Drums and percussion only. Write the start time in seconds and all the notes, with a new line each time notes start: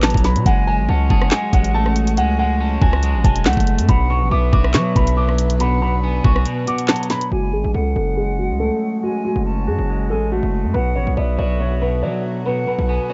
0.03 cross-stick, snare, clap, closed hi-hat
0.10 closed hi-hat
0.14 kick, closed hi-hat
0.24 snare, closed hi-hat
0.36 closed hi-hat
0.46 kick, closed hi-hat
1.10 kick
1.22 cross-stick
1.31 snare, clap, closed hi-hat
1.53 kick, closed hi-hat
1.64 closed hi-hat
1.86 cross-stick
1.96 closed hi-hat
2.07 closed hi-hat
2.17 closed hi-hat
2.82 kick
2.93 cross-stick
3.03 closed hi-hat
3.24 kick, closed hi-hat
3.36 closed hi-hat
3.45 cross-stick, snare, clap, closed hi-hat
3.53 closed hi-hat
3.57 kick, closed hi-hat
3.67 closed hi-hat
3.78 closed hi-hat
3.89 kick, closed hi-hat
4.53 kick
4.64 cross-stick
4.74 snare, clap, closed hi-hat
4.96 kick, closed hi-hat
5.07 closed hi-hat
5.29 cross-stick
5.38 closed hi-hat
5.50 closed hi-hat
5.60 closed hi-hat
6.24 kick
6.36 cross-stick
6.45 closed hi-hat
6.67 closed hi-hat
6.78 closed hi-hat
6.88 cross-stick, snare, clap, closed hi-hat
6.96 closed hi-hat
7.03 closed hi-hat
7.10 snare, closed hi-hat
7.21 closed hi-hat